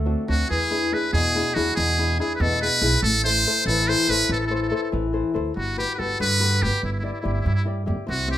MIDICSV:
0, 0, Header, 1, 4, 480
1, 0, Start_track
1, 0, Tempo, 421644
1, 579, Time_signature, 6, 3, 24, 8
1, 9539, End_track
2, 0, Start_track
2, 0, Title_t, "Muted trumpet"
2, 0, Program_c, 0, 59
2, 338, Note_on_c, 0, 66, 86
2, 560, Note_off_c, 0, 66, 0
2, 567, Note_on_c, 0, 68, 93
2, 1063, Note_on_c, 0, 71, 77
2, 1081, Note_off_c, 0, 68, 0
2, 1282, Note_off_c, 0, 71, 0
2, 1289, Note_on_c, 0, 68, 102
2, 1759, Note_on_c, 0, 66, 92
2, 1776, Note_off_c, 0, 68, 0
2, 1994, Note_off_c, 0, 66, 0
2, 2001, Note_on_c, 0, 68, 97
2, 2458, Note_off_c, 0, 68, 0
2, 2506, Note_on_c, 0, 68, 84
2, 2671, Note_off_c, 0, 68, 0
2, 2680, Note_on_c, 0, 71, 72
2, 2743, Note_on_c, 0, 69, 107
2, 2760, Note_off_c, 0, 71, 0
2, 2972, Note_off_c, 0, 69, 0
2, 2979, Note_on_c, 0, 71, 107
2, 3420, Note_off_c, 0, 71, 0
2, 3452, Note_on_c, 0, 69, 104
2, 3675, Note_off_c, 0, 69, 0
2, 3698, Note_on_c, 0, 72, 110
2, 4137, Note_off_c, 0, 72, 0
2, 4176, Note_on_c, 0, 69, 105
2, 4419, Note_on_c, 0, 72, 110
2, 4436, Note_off_c, 0, 69, 0
2, 4664, Note_on_c, 0, 71, 122
2, 4681, Note_off_c, 0, 72, 0
2, 4896, Note_off_c, 0, 71, 0
2, 4918, Note_on_c, 0, 69, 87
2, 4982, Note_off_c, 0, 69, 0
2, 5006, Note_on_c, 0, 69, 59
2, 5068, Note_off_c, 0, 69, 0
2, 5081, Note_on_c, 0, 69, 79
2, 5147, Note_off_c, 0, 69, 0
2, 5180, Note_on_c, 0, 69, 61
2, 5238, Note_off_c, 0, 69, 0
2, 5259, Note_on_c, 0, 69, 57
2, 5319, Note_off_c, 0, 69, 0
2, 5334, Note_on_c, 0, 69, 61
2, 5398, Note_off_c, 0, 69, 0
2, 5413, Note_on_c, 0, 69, 66
2, 5479, Note_off_c, 0, 69, 0
2, 5495, Note_on_c, 0, 69, 51
2, 5562, Note_off_c, 0, 69, 0
2, 6343, Note_on_c, 0, 66, 80
2, 6568, Note_off_c, 0, 66, 0
2, 6586, Note_on_c, 0, 67, 91
2, 6752, Note_off_c, 0, 67, 0
2, 6774, Note_on_c, 0, 71, 57
2, 6814, Note_on_c, 0, 69, 77
2, 6831, Note_off_c, 0, 71, 0
2, 7058, Note_off_c, 0, 69, 0
2, 7071, Note_on_c, 0, 71, 108
2, 7546, Note_on_c, 0, 67, 93
2, 7564, Note_off_c, 0, 71, 0
2, 7783, Note_off_c, 0, 67, 0
2, 7794, Note_on_c, 0, 64, 67
2, 7865, Note_off_c, 0, 64, 0
2, 7884, Note_on_c, 0, 64, 43
2, 7952, Note_off_c, 0, 64, 0
2, 7962, Note_on_c, 0, 64, 59
2, 8017, Note_off_c, 0, 64, 0
2, 8024, Note_on_c, 0, 64, 43
2, 8103, Note_off_c, 0, 64, 0
2, 8117, Note_on_c, 0, 64, 46
2, 8191, Note_off_c, 0, 64, 0
2, 8203, Note_on_c, 0, 64, 38
2, 8262, Note_off_c, 0, 64, 0
2, 8269, Note_on_c, 0, 64, 48
2, 8341, Note_off_c, 0, 64, 0
2, 8348, Note_on_c, 0, 64, 43
2, 8429, Note_off_c, 0, 64, 0
2, 8435, Note_on_c, 0, 64, 53
2, 8491, Note_off_c, 0, 64, 0
2, 8498, Note_on_c, 0, 64, 63
2, 8587, Note_off_c, 0, 64, 0
2, 8594, Note_on_c, 0, 64, 69
2, 8676, Note_off_c, 0, 64, 0
2, 9225, Note_on_c, 0, 66, 88
2, 9443, Note_off_c, 0, 66, 0
2, 9463, Note_on_c, 0, 67, 82
2, 9539, Note_off_c, 0, 67, 0
2, 9539, End_track
3, 0, Start_track
3, 0, Title_t, "Nylon-string guitar"
3, 0, Program_c, 1, 24
3, 0, Note_on_c, 1, 57, 75
3, 60, Note_on_c, 1, 60, 42
3, 67, Note_on_c, 1, 62, 43
3, 73, Note_on_c, 1, 66, 46
3, 305, Note_off_c, 1, 62, 0
3, 306, Note_off_c, 1, 60, 0
3, 307, Note_off_c, 1, 57, 0
3, 314, Note_off_c, 1, 66, 0
3, 320, Note_on_c, 1, 60, 46
3, 321, Note_on_c, 1, 62, 43
3, 327, Note_on_c, 1, 66, 49
3, 520, Note_off_c, 1, 62, 0
3, 521, Note_off_c, 1, 60, 0
3, 525, Note_off_c, 1, 66, 0
3, 571, Note_on_c, 1, 52, 66
3, 803, Note_on_c, 1, 62, 46
3, 808, Note_on_c, 1, 64, 39
3, 813, Note_on_c, 1, 68, 43
3, 1034, Note_off_c, 1, 62, 0
3, 1035, Note_off_c, 1, 64, 0
3, 1044, Note_off_c, 1, 68, 0
3, 1047, Note_on_c, 1, 62, 53
3, 1048, Note_off_c, 1, 52, 0
3, 1052, Note_on_c, 1, 64, 46
3, 1057, Note_on_c, 1, 68, 57
3, 1289, Note_on_c, 1, 47, 70
3, 1442, Note_off_c, 1, 62, 0
3, 1443, Note_off_c, 1, 64, 0
3, 1448, Note_off_c, 1, 68, 0
3, 1534, Note_on_c, 1, 62, 49
3, 1544, Note_on_c, 1, 68, 48
3, 1545, Note_on_c, 1, 64, 38
3, 1760, Note_off_c, 1, 62, 0
3, 1761, Note_off_c, 1, 64, 0
3, 1766, Note_off_c, 1, 47, 0
3, 1768, Note_off_c, 1, 68, 0
3, 1772, Note_on_c, 1, 62, 51
3, 1778, Note_on_c, 1, 64, 43
3, 1782, Note_on_c, 1, 68, 49
3, 2012, Note_on_c, 1, 47, 61
3, 2163, Note_off_c, 1, 62, 0
3, 2164, Note_off_c, 1, 64, 0
3, 2168, Note_off_c, 1, 68, 0
3, 2261, Note_on_c, 1, 62, 47
3, 2267, Note_on_c, 1, 64, 38
3, 2270, Note_on_c, 1, 68, 47
3, 2483, Note_off_c, 1, 47, 0
3, 2487, Note_off_c, 1, 62, 0
3, 2488, Note_off_c, 1, 64, 0
3, 2493, Note_off_c, 1, 68, 0
3, 2499, Note_on_c, 1, 62, 45
3, 2504, Note_on_c, 1, 64, 47
3, 2507, Note_on_c, 1, 68, 57
3, 2746, Note_on_c, 1, 47, 78
3, 2884, Note_off_c, 1, 62, 0
3, 2884, Note_off_c, 1, 64, 0
3, 2887, Note_off_c, 1, 68, 0
3, 2970, Note_on_c, 1, 62, 49
3, 2981, Note_on_c, 1, 68, 54
3, 2985, Note_on_c, 1, 64, 40
3, 3196, Note_off_c, 1, 64, 0
3, 3197, Note_off_c, 1, 62, 0
3, 3201, Note_off_c, 1, 68, 0
3, 3206, Note_off_c, 1, 47, 0
3, 3210, Note_on_c, 1, 62, 54
3, 3213, Note_on_c, 1, 64, 50
3, 3215, Note_on_c, 1, 68, 56
3, 3402, Note_off_c, 1, 62, 0
3, 3402, Note_off_c, 1, 64, 0
3, 3405, Note_off_c, 1, 68, 0
3, 3451, Note_on_c, 1, 57, 54
3, 3691, Note_on_c, 1, 64, 46
3, 3694, Note_on_c, 1, 69, 46
3, 3701, Note_on_c, 1, 72, 65
3, 3915, Note_off_c, 1, 57, 0
3, 3935, Note_off_c, 1, 69, 0
3, 3936, Note_off_c, 1, 64, 0
3, 3943, Note_off_c, 1, 72, 0
3, 3949, Note_on_c, 1, 64, 56
3, 3951, Note_on_c, 1, 69, 43
3, 3957, Note_on_c, 1, 72, 55
3, 4192, Note_on_c, 1, 52, 77
3, 4324, Note_off_c, 1, 69, 0
3, 4325, Note_off_c, 1, 64, 0
3, 4329, Note_off_c, 1, 72, 0
3, 4423, Note_on_c, 1, 64, 49
3, 4430, Note_on_c, 1, 72, 46
3, 4432, Note_on_c, 1, 69, 51
3, 4646, Note_off_c, 1, 52, 0
3, 4648, Note_off_c, 1, 64, 0
3, 4653, Note_off_c, 1, 69, 0
3, 4655, Note_off_c, 1, 72, 0
3, 4661, Note_on_c, 1, 64, 49
3, 4666, Note_on_c, 1, 69, 44
3, 4671, Note_on_c, 1, 72, 51
3, 4901, Note_on_c, 1, 52, 63
3, 5042, Note_off_c, 1, 64, 0
3, 5045, Note_off_c, 1, 69, 0
3, 5047, Note_off_c, 1, 72, 0
3, 5120, Note_on_c, 1, 64, 50
3, 5126, Note_on_c, 1, 69, 41
3, 5137, Note_on_c, 1, 72, 51
3, 5349, Note_off_c, 1, 69, 0
3, 5350, Note_off_c, 1, 64, 0
3, 5350, Note_off_c, 1, 72, 0
3, 5359, Note_on_c, 1, 64, 52
3, 5363, Note_off_c, 1, 52, 0
3, 5365, Note_on_c, 1, 69, 51
3, 5371, Note_on_c, 1, 72, 54
3, 5603, Note_on_c, 1, 52, 73
3, 5755, Note_off_c, 1, 64, 0
3, 5755, Note_off_c, 1, 69, 0
3, 5755, Note_off_c, 1, 72, 0
3, 5839, Note_on_c, 1, 64, 40
3, 5842, Note_on_c, 1, 69, 43
3, 5850, Note_on_c, 1, 72, 55
3, 6064, Note_off_c, 1, 64, 0
3, 6067, Note_off_c, 1, 69, 0
3, 6072, Note_off_c, 1, 72, 0
3, 6076, Note_on_c, 1, 64, 50
3, 6078, Note_off_c, 1, 52, 0
3, 6084, Note_on_c, 1, 69, 44
3, 6085, Note_on_c, 1, 72, 42
3, 6279, Note_off_c, 1, 64, 0
3, 6280, Note_off_c, 1, 69, 0
3, 6283, Note_off_c, 1, 72, 0
3, 6328, Note_on_c, 1, 55, 46
3, 6572, Note_on_c, 1, 66, 47
3, 6574, Note_on_c, 1, 67, 39
3, 6582, Note_on_c, 1, 71, 47
3, 6797, Note_off_c, 1, 66, 0
3, 6801, Note_off_c, 1, 67, 0
3, 6803, Note_off_c, 1, 55, 0
3, 6810, Note_on_c, 1, 66, 52
3, 6813, Note_off_c, 1, 71, 0
3, 6815, Note_on_c, 1, 67, 39
3, 6827, Note_on_c, 1, 71, 52
3, 7057, Note_on_c, 1, 50, 69
3, 7200, Note_off_c, 1, 66, 0
3, 7203, Note_off_c, 1, 67, 0
3, 7210, Note_off_c, 1, 71, 0
3, 7283, Note_on_c, 1, 66, 45
3, 7288, Note_on_c, 1, 67, 43
3, 7297, Note_on_c, 1, 71, 43
3, 7523, Note_off_c, 1, 66, 0
3, 7525, Note_off_c, 1, 50, 0
3, 7528, Note_off_c, 1, 67, 0
3, 7530, Note_off_c, 1, 71, 0
3, 7536, Note_on_c, 1, 66, 42
3, 7539, Note_on_c, 1, 67, 41
3, 7547, Note_on_c, 1, 71, 51
3, 7730, Note_off_c, 1, 66, 0
3, 7733, Note_off_c, 1, 67, 0
3, 7734, Note_off_c, 1, 71, 0
3, 7766, Note_on_c, 1, 55, 57
3, 7997, Note_off_c, 1, 55, 0
3, 8001, Note_on_c, 1, 64, 41
3, 8005, Note_on_c, 1, 67, 37
3, 8013, Note_on_c, 1, 74, 53
3, 8216, Note_off_c, 1, 64, 0
3, 8221, Note_off_c, 1, 67, 0
3, 8224, Note_off_c, 1, 74, 0
3, 8227, Note_on_c, 1, 64, 48
3, 8238, Note_on_c, 1, 67, 50
3, 8238, Note_on_c, 1, 74, 59
3, 8467, Note_on_c, 1, 55, 66
3, 8624, Note_off_c, 1, 64, 0
3, 8627, Note_off_c, 1, 67, 0
3, 8629, Note_off_c, 1, 74, 0
3, 8710, Note_on_c, 1, 64, 48
3, 8718, Note_on_c, 1, 67, 39
3, 8728, Note_on_c, 1, 74, 51
3, 8934, Note_off_c, 1, 64, 0
3, 8941, Note_off_c, 1, 67, 0
3, 8945, Note_off_c, 1, 55, 0
3, 8945, Note_off_c, 1, 74, 0
3, 8948, Note_on_c, 1, 64, 50
3, 8954, Note_on_c, 1, 67, 37
3, 8961, Note_on_c, 1, 74, 50
3, 9149, Note_off_c, 1, 64, 0
3, 9153, Note_off_c, 1, 67, 0
3, 9155, Note_off_c, 1, 74, 0
3, 9182, Note_on_c, 1, 48, 63
3, 9421, Note_on_c, 1, 60, 40
3, 9426, Note_on_c, 1, 64, 38
3, 9427, Note_on_c, 1, 67, 45
3, 9539, Note_off_c, 1, 48, 0
3, 9539, Note_off_c, 1, 60, 0
3, 9539, Note_off_c, 1, 64, 0
3, 9539, Note_off_c, 1, 67, 0
3, 9539, End_track
4, 0, Start_track
4, 0, Title_t, "Upright bass"
4, 0, Program_c, 2, 32
4, 0, Note_on_c, 2, 38, 80
4, 156, Note_off_c, 2, 38, 0
4, 329, Note_on_c, 2, 38, 74
4, 489, Note_off_c, 2, 38, 0
4, 575, Note_on_c, 2, 40, 71
4, 1049, Note_off_c, 2, 40, 0
4, 1286, Note_on_c, 2, 40, 92
4, 1606, Note_off_c, 2, 40, 0
4, 1778, Note_on_c, 2, 40, 93
4, 1937, Note_off_c, 2, 40, 0
4, 2017, Note_on_c, 2, 40, 97
4, 2485, Note_off_c, 2, 40, 0
4, 2731, Note_on_c, 2, 40, 102
4, 3044, Note_off_c, 2, 40, 0
4, 3205, Note_on_c, 2, 35, 86
4, 3363, Note_off_c, 2, 35, 0
4, 3444, Note_on_c, 2, 33, 95
4, 3911, Note_off_c, 2, 33, 0
4, 4162, Note_on_c, 2, 33, 93
4, 4476, Note_off_c, 2, 33, 0
4, 4647, Note_on_c, 2, 33, 74
4, 4803, Note_off_c, 2, 33, 0
4, 4887, Note_on_c, 2, 33, 89
4, 5358, Note_off_c, 2, 33, 0
4, 5616, Note_on_c, 2, 33, 83
4, 5930, Note_off_c, 2, 33, 0
4, 6099, Note_on_c, 2, 38, 82
4, 6255, Note_off_c, 2, 38, 0
4, 6339, Note_on_c, 2, 31, 71
4, 6654, Note_off_c, 2, 31, 0
4, 6825, Note_on_c, 2, 31, 75
4, 6979, Note_off_c, 2, 31, 0
4, 7059, Note_on_c, 2, 43, 86
4, 7538, Note_on_c, 2, 31, 73
4, 7555, Note_off_c, 2, 43, 0
4, 7617, Note_off_c, 2, 31, 0
4, 7776, Note_on_c, 2, 31, 77
4, 8089, Note_off_c, 2, 31, 0
4, 8256, Note_on_c, 2, 31, 78
4, 8412, Note_off_c, 2, 31, 0
4, 8489, Note_on_c, 2, 43, 87
4, 8965, Note_on_c, 2, 31, 83
4, 8982, Note_off_c, 2, 43, 0
4, 9045, Note_off_c, 2, 31, 0
4, 9207, Note_on_c, 2, 36, 87
4, 9520, Note_off_c, 2, 36, 0
4, 9539, End_track
0, 0, End_of_file